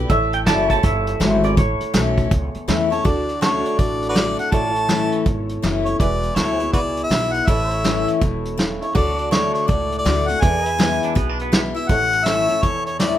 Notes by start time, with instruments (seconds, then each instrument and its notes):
0.00 steel-string acoustic guitar B3
0.09 upright bass A1, steel-string acoustic guitar A2, honky-tonk piano E4 A4 C#5, clean electric guitar E5, kick, closed hi-hat
0.33 clean electric guitar G5, closed hi-hat
0.46 upright bass F#1, steel-string acoustic guitar E3 A3 C#4 E4, pedal steel guitar E4 A4 D5, clean electric guitar A5, snare, closed hi-hat
0.69 steel-string acoustic guitar C#4 E4, pedal steel guitar C#5, clean electric guitar A5, kick, closed hi-hat
0.83 upright bass G1, steel-string acoustic guitar E2, clean electric guitar E5, kick, closed hi-hat
1.07 closed hi-hat
1.20 upright bass G#1, steel-string acoustic guitar E3 A3 C#4 E4, snare, closed hi-hat
1.43 steel-string acoustic guitar C#4 E4, clean electric guitar D5, closed hi-hat
1.57 upright bass A1, steel-string acoustic guitar A2, clean electric guitar C#5, kick, closed hi-hat
1.80 muted upright bass stroke, closed hi-hat
1.94 upright bass B1, steel-string acoustic guitar E3 A3 C#4 E4, snare, closed hi-hat
2.17 kick, closed hi-hat
2.31 upright bass C#2, steel-string acoustic guitar E2, kick, closed hi-hat
2.54 muted upright bass stroke, closed hi-hat
2.68 upright bass E2, steel-string acoustic guitar E3 A3 C#4 E4, honky-tonk piano E5, snare, closed hi-hat
2.90 steel-string acoustic guitar C#4 E4, harmonica C#5, honky-tonk piano A5, closed hi-hat
3.04 upright bass D2, steel-string acoustic guitar D3, honky-tonk piano D4 F#4 A4, harmonica D5, kick, closed hi-hat
3.29 closed hi-hat
3.41 steel-string acoustic guitar D3 A3 D4 F#4, pedal steel guitar C#4 F#4 A4, harmonica F#4 A4 C#5, snare, closed hi-hat
3.65 pedal steel guitar D4, closed hi-hat
3.78 upright bass A1, steel-string acoustic guitar A2, harmonica D5, kick, closed hi-hat
4.02 closed hi-hat
4.09 harmonica F#4 B4 D5
4.15 steel-string acoustic guitar D3 A3 D4 F#4, snare, closed hi-hat
4.38 steel-string acoustic guitar D4 F#4, harmonica F#5, closed hi-hat
4.51 upright bass A1, steel-string acoustic guitar A2, honky-tonk piano E4 A4 C#5, pedal steel guitar F#4 A4 D5, harmonica A5, kick, closed hi-hat
4.74 pedal steel guitar E4 C#5, closed hi-hat
4.89 steel-string acoustic guitar E3 A3 C#4 E4, snare, closed hi-hat
5.12 closed hi-hat
5.26 upright bass G#1, steel-string acoustic guitar E2, kick, closed hi-hat
5.49 closed hi-hat
5.62 upright bass F#1, steel-string acoustic guitar E3 A3 C#4 E4, snare, closed hi-hat
5.85 steel-string acoustic guitar C#4 E4, harmonica C#5, closed hi-hat
5.99 upright bass E1, steel-string acoustic guitar E2, honky-tonk piano E4 G#4 B4, harmonica D5, kick, closed hi-hat
6.23 closed hi-hat
6.35 upright bass D2, steel-string acoustic guitar E3 G#3 B3 E4, pedal steel guitar E4 A4 C#5, harmonica C#5, snare, closed hi-hat
6.57 steel-string acoustic guitar E4, pedal steel guitar G#4, closed hi-hat
6.62 steel-string acoustic guitar B3, pedal steel guitar B4
6.73 upright bass C#2, steel-string acoustic guitar B2, harmonica F#4 B4 D5, kick, closed hi-hat
6.97 closed hi-hat
7.04 harmonica E5
7.10 upright bass B1, steel-string acoustic guitar E3 G#3 B3 E4, snare, closed hi-hat
7.33 harmonica F#5, closed hi-hat
7.47 upright bass A1, steel-string acoustic guitar A2, honky-tonk piano E4 A4 C#5, pedal steel guitar E4 A4 B4, harmonica E5, kick, closed hi-hat
7.71 pedal steel guitar C#5, closed hi-hat
7.84 steel-string acoustic guitar E3 A3 C#4 E4, snare, closed hi-hat
8.08 closed hi-hat
8.21 upright bass E1, steel-string acoustic guitar B2, kick, closed hi-hat
8.45 closed hi-hat
8.58 steel-string acoustic guitar C#3, snare, closed hi-hat
8.81 honky-tonk piano E4 A4 C#5, harmonica C#5, closed hi-hat
8.95 upright bass D2, steel-string acoustic guitar D3, pedal steel guitar F#4 A4 C#5, honky-tonk piano F#4 A4 D5, harmonica D5, kick, closed hi-hat
9.18 pedal steel guitar D5, closed hi-hat
9.31 steel-string acoustic guitar D3 A3 D4 F#4, harmonica C#5, snare, closed hi-hat
9.54 harmonica C#5, closed hi-hat
9.67 upright bass C#2, steel-string acoustic guitar A2, harmonica D5, kick, closed hi-hat
9.92 closed hi-hat
9.99 harmonica D5
10.05 upright bass D2, steel-string acoustic guitar D3 A3 D4 F#4, snare, closed hi-hat
10.28 steel-string acoustic guitar D4 F#4, harmonica F#5, closed hi-hat
10.41 upright bass E2, steel-string acoustic guitar E2, honky-tonk piano E4 G#4 B4, pedal steel guitar G#4 A4 D5, harmonica G#5, kick, closed hi-hat
10.66 pedal steel guitar B4 E5, closed hi-hat
10.78 steel-string acoustic guitar E3 G#3 B3 E4, snare, closed hi-hat
11.03 clean electric guitar D4, closed hi-hat
11.15 upright bass B1, steel-string acoustic guitar B2, clean electric guitar B3, kick, closed hi-hat
11.29 clean electric guitar D4
11.39 clean electric guitar B3, closed hi-hat
11.52 steel-string acoustic guitar E3 G#3 B3 E4, snare, closed hi-hat
11.74 steel-string acoustic guitar B3 E4, harmonica E5, closed hi-hat
11.89 upright bass A1, steel-string acoustic guitar A2, honky-tonk piano E4 A4 C#5, harmonica F#5, kick, closed hi-hat
12.12 closed hi-hat
12.25 steel-string acoustic guitar E3 A3 C#4 E4, pedal steel guitar A4 C#5 E5, harmonica E5, snare, closed hi-hat
12.49 steel-string acoustic guitar C#4 E4, closed hi-hat
12.63 upright bass E2, steel-string acoustic guitar E2, harmonica C#5, kick, closed hi-hat
12.86 harmonica C#5, closed hi-hat
12.99 steel-string acoustic guitar E3 A3 C#4 E4, harmonica D5, snare, closed hi-hat